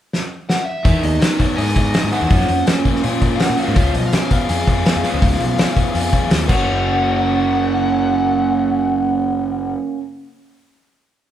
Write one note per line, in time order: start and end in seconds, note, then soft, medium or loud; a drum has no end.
0.13 snare medium
0.49 0.65 F#5 medium
0.49 snare medium
0.65 1.04 E5 medium
0.85 0.99 E2 medium
0.85 1.76 D#3 medium
0.85 1.02 B3 medium
0.85 1.02 E4 medium
0.85 1.03 G#4 medium
0.85 kick loud
0.85 open hi-hat medium
1.03 1.18 D#2 medium
1.03 1.20 B3 medium
1.03 1.20 E4 medium
1.03 1.22 D#5 loud
1.03 open hi-hat medium
1.20 1.38 B3 medium
1.20 1.74 D#4 medium
1.20 1.38 E4 medium
1.20 1.40 B4 medium
1.20 snare loud
1.20 open hi-hat medium
1.39 1.57 B3 medium
1.39 1.57 E4 medium
1.39 1.56 C#5 medium
1.39 kick medium
1.39 open hi-hat soft
1.56 1.93 G#2 medium
1.56 1.74 B3 medium
1.56 1.75 E4 medium
1.56 2.30 G#4 medium
1.56 2.11 D#5 medium
1.56 open hi-hat medium
1.75 1.93 B3 medium
1.75 2.30 D#4 medium
1.75 1.93 E4 medium
1.75 kick medium
1.75 open hi-hat medium
1.94 2.30 D#3 medium
1.94 2.11 B3 medium
1.94 2.11 E4 medium
1.94 snare loud
1.94 open hi-hat medium
2.04 2.11 G#2 medium
2.11 2.29 B3 medium
2.11 2.30 E4 medium
2.11 2.30 G#4 medium
2.11 2.63 F#5 medium
2.11 open hi-hat medium
2.22 2.29 E2 medium
2.30 2.45 F#2 medium
2.30 3.39 F3 medium
2.30 2.48 A#3 medium
2.30 2.48 C#4 loud
2.30 2.48 F#4 medium
2.30 kick loud
2.30 open hi-hat medium
2.40 snare soft
2.48 2.63 F2 medium
2.48 2.65 A#3 medium
2.48 2.65 C#4 medium
2.48 open hi-hat medium
2.67 2.83 A#3 medium
2.67 2.84 C#4 loud
2.67 snare loud
2.67 open hi-hat medium
2.85 3.02 A#3 medium
2.85 3.02 C#4 medium
2.85 kick medium
2.85 open hi-hat soft
2.95 snare soft
3.03 3.39 A#2 medium
3.03 3.20 A#3 medium
3.03 3.20 C#4 medium
3.03 4.33 F4 medium
3.03 open hi-hat medium
3.21 3.38 A#3 medium
3.21 3.38 C#4 medium
3.21 kick medium
3.21 open hi-hat soft
3.36 3.75 F3 medium
3.36 3.56 A#3 medium
3.36 3.56 C#4 medium
3.36 3.40 F5 medium
3.36 open hi-hat medium
3.40 3.57 F#5 loud
3.40 snare loud
3.50 3.56 A#2 medium
3.57 3.75 A#3 medium
3.57 3.75 C#4 medium
3.57 3.75 F#4 medium
3.57 3.96 F5 medium
3.57 open hi-hat soft
3.68 3.75 G#2 medium
3.75 3.91 C#2 loud
3.75 3.93 F3 medium
3.75 3.93 B3 medium
3.75 6.46 C#4 medium
3.75 3.93 C#4 loud
3.75 6.46 G#4 medium
3.75 6.46 B4 medium
3.75 6.46 F5 medium
3.75 kick loud
3.75 open hi-hat medium
3.94 4.09 B1 medium
3.94 4.11 F3 medium
3.94 4.11 B3 medium
3.94 4.06 D#5 medium
3.94 open hi-hat medium
4.06 4.32 F5 medium
4.12 4.29 F3 medium
4.12 4.29 B3 medium
4.12 4.67 C#4 medium
4.12 snare loud
4.12 open hi-hat medium
4.31 4.47 F3 medium
4.31 4.47 B3 medium
4.31 6.28 F5 medium
4.31 kick medium
4.31 open hi-hat medium
4.49 4.85 F2 medium
4.49 4.65 F3 medium
4.49 4.66 B3 medium
4.49 5.40 G#4 medium
4.49 open hi-hat medium
4.67 4.83 F3 medium
4.67 4.84 B3 medium
4.67 5.58 C#4 medium
4.67 kick medium
4.67 open hi-hat medium
4.85 5.02 F3 medium
4.85 5.02 B3 medium
4.85 snare loud
4.85 open hi-hat medium
4.96 5.02 F2 medium
5.04 5.21 F3 medium
5.04 5.21 B3 medium
5.04 5.21 C#4 loud
5.04 open hi-hat medium
5.13 5.20 C#2 medium
5.22 5.36 C#2 loud
5.22 5.38 F3 medium
5.22 5.39 B3 medium
5.22 kick loud
5.22 open hi-hat medium
5.32 snare soft
5.40 5.54 B1 medium
5.40 5.57 F3 medium
5.40 5.57 B3 medium
5.40 open hi-hat medium
5.58 5.75 F3 medium
5.58 5.75 B3 medium
5.58 6.11 C#4 medium
5.58 snare loud
5.58 open hi-hat medium
5.76 5.93 F3 medium
5.76 5.93 B3 medium
5.76 kick medium
5.76 open hi-hat medium
5.94 6.23 F2 medium
5.94 6.11 F3 medium
5.94 6.11 B3 medium
5.94 6.49 G#4 medium
5.94 open hi-hat medium
6.13 6.29 F3 medium
6.13 6.29 B3 medium
6.13 6.48 C#4 medium
6.13 kick medium
6.13 open hi-hat medium
6.30 6.47 D#2 medium
6.30 6.47 F3 medium
6.30 6.47 B3 medium
6.30 snare loud
6.30 open hi-hat medium
6.46 9.74 F#1 medium
6.46 9.98 A#3 medium
6.46 9.71 C#4 medium
6.46 10.00 C#4 loud
6.46 9.71 F#4 medium
6.46 9.72 A#4 medium
6.46 9.71 C#5 medium
6.46 9.71 F#5 medium
6.46 9.73 F#5 medium
6.46 kick medium
6.46 crash medium
6.52 10.02 F#4 medium